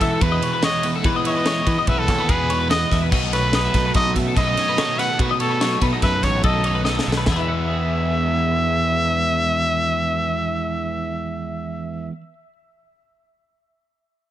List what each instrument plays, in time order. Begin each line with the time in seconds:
Already playing: clean electric guitar E2 E3 B4, overdriven electric guitar E3 G#3 B3 E4, trumpet A4
0.01 clean electric guitar B2 B3 E5, fingered electric bass E3, kick, snare, ride
0.11 clean electric guitar A4
0.20 fingered electric bass E2, overdriven electric guitar E3 G#3 B3 E4, trumpet B4, clean electric guitar B4, kick, ride
0.32 clean electric guitar D#5
0.41 overdriven electric guitar G#3 B3 E4, clean electric guitar C#5, ride
0.53 clean electric guitar B4
0.62 clean electric guitar E2 B4 C#5, overdriven electric guitar E3 G#3 B3 E4, trumpet D#5, snare, ride
0.83 overdriven electric guitar G#3 B3 E4, clean electric guitar B3 B4, ride
0.95 clean electric guitar A4
1.03 clean electric guitar E2 B4, overdriven electric guitar E3 G#3 B3 E4, fingered electric bass E3, kick, ride
1.16 clean electric guitar D#5
1.24 overdriven electric guitar G#3 B3 E4, clean electric guitar B3 C#5, trumpet D#5, ride
1.37 clean electric guitar B4
1.44 clean electric guitar E3 C#4 C#5, overdriven electric guitar E3 G#3 B3 E4, snare, ride
1.65 fingered electric bass E3, overdriven electric guitar G#3 B3 E4, clean electric guitar B3 B4, kick, ride
1.79 clean electric guitar D#5
1.87 fingered electric bass B1, clean electric guitar C#4 E5, trumpet B4, kick, ride
1.99 trumpet A4, clean electric guitar B4
2.08 fingered electric bass D#2, clean electric guitar B2 A3 C#5, kick, snare, ride
2.18 clean electric guitar B3 B4
2.27 fingered electric bass E2, overdriven electric guitar E3 G#3 B3 E4, clean electric guitar G#4, trumpet B4, kick, ride
2.49 overdriven electric guitar G#3 B3 E4, clean electric guitar C#5, ride
2.60 clean electric guitar B4
2.69 clean electric guitar E2 B4 D#5, overdriven electric guitar E3 G#3 B3 E4, trumpet D#5, snare, ride
2.81 clean electric guitar D#5
2.89 fingered electric bass E2, overdriven electric guitar G#3 B3 E4, clean electric guitar B3 E5, kick, snare, ride
3.02 clean electric guitar B4
3.09 fingered electric bass B1, overdriven electric guitar B2 D#3 F#3 B3 D#4 A4, clean electric guitar B2 F#4 D#5, kick, crash
3.22 clean electric guitar A4
3.31 overdriven electric guitar F#3 B3 D#4 A4, clean electric guitar A3 C#5, trumpet B4, snare, ride
3.44 clean electric guitar B4
3.51 overdriven electric guitar F#3 B3 D#4 A4, clean electric guitar F#3 D#4 D#5, snare, ride
3.65 clean electric guitar E5
3.72 fingered electric bass B1, overdriven electric guitar F#3 B3 D#4 A4, clean electric guitar A3 D#5, kick, snare, ride
3.86 clean electric guitar B4
3.94 fingered electric bass B1, clean electric guitar A4 D#5, trumpet D#5, kick, snare, ride
4.14 clean electric guitar F#2 A3 E5, fingered electric bass B2, kick, snare, ride
4.28 clean electric guitar A4
4.35 fingered electric bass B1, overdriven electric guitar B2 D#3 F#3 B3 D#4 A4, clean electric guitar B4, trumpet D#5, kick, snare, ride
4.47 clean electric guitar D#5
4.55 overdriven electric guitar F#3 B3 D#4 A4, clean electric guitar C#4 C#5, snare, ride
4.67 clean electric guitar D#4 B4
4.76 overdriven electric guitar B2 D#3 F#3 B3 D#4 A4, clean electric guitar B2 A4 C#5, snare, ride
4.96 overdriven electric guitar F#3 B3 D#4 A4, clean electric guitar A3 B4, trumpet F#5, snare, ride
5.10 clean electric guitar A4
5.18 overdriven electric guitar B2 D#3 F#3 B3 D#4 A4, clean electric guitar B2 F#4 B4, fingered electric bass B2, kick, ride
5.29 clean electric guitar A4 D#5
5.39 overdriven electric guitar F#3 B3 D#4 A4, clean electric guitar A3 C#5, trumpet A4, ride
5.50 clean electric guitar B4
5.60 overdriven electric guitar F#3 B3 D#4 A4, clean electric guitar F#3 D#4 C#5, snare, ride
5.80 fingered electric bass B2, overdriven electric guitar F#3 B3 D#4 A4, clean electric guitar A3 B4, kick, ride
5.93 clean electric guitar D#5
6.02 fingered electric bass F#2, clean electric guitar A4 E5, trumpet B4, kick, snare, ride
6.14 clean electric guitar B4
6.23 fingered electric bass A1, clean electric guitar F#2 A3 C#5, trumpet C#5, kick, snare, ride
6.35 clean electric guitar B4
6.42 fingered electric bass B1, overdriven electric guitar B2 D#3 F#3 B3 D#4 A4, clean electric guitar A4, trumpet D#5, kick, ride
6.63 overdriven electric guitar F#3 B3 D#4 A4, clean electric guitar D#4 C#5, ride
6.75 clean electric guitar B4
6.83 overdriven electric guitar B2 D#3 F#3 B3 D#4 A4, clean electric guitar B2 D#5, snare
6.88 clean electric guitar A4
6.96 clean electric guitar D#5, snare
7.05 fingered electric bass B1, overdriven electric guitar F#3 B3 D#4 A4, clean electric guitar E5
7.09 clean electric guitar A3, snare
7.17 clean electric guitar B4
7.26 fingered electric bass E2, clean electric guitar E2 E4, overdriven electric guitar E3 G#3 B3, trumpet E5, kick, snare
7.30 overdriven electric guitar E4, clean electric guitar G#4
7.36 clean electric guitar E3 B4
7.40 clean electric guitar E5
7.48 clean electric guitar B3
7.68 clean electric guitar G#4